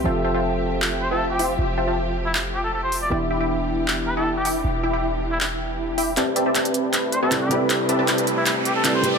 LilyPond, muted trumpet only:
\new Staff \with { instrumentName = "Muted trumpet" } { \time 4/4 \key c \major \tempo 4 = 157 r2 r8 c''16 a'16 r16 g'16 r8 | r4. r16 e'16 e'16 r16 g'16 a'16 a'16 c''16 r16 d''16 | d''16 r2 r16 b'16 a'16 r16 g'16 r8 | r4. r16 e'16 e'16 r4. r16 |
r2 r8 c''16 a'16 r16 g'16 r8 | r4. r16 e'16 e'16 r16 g'16 a'16 a'16 c''16 r16 d''16 | }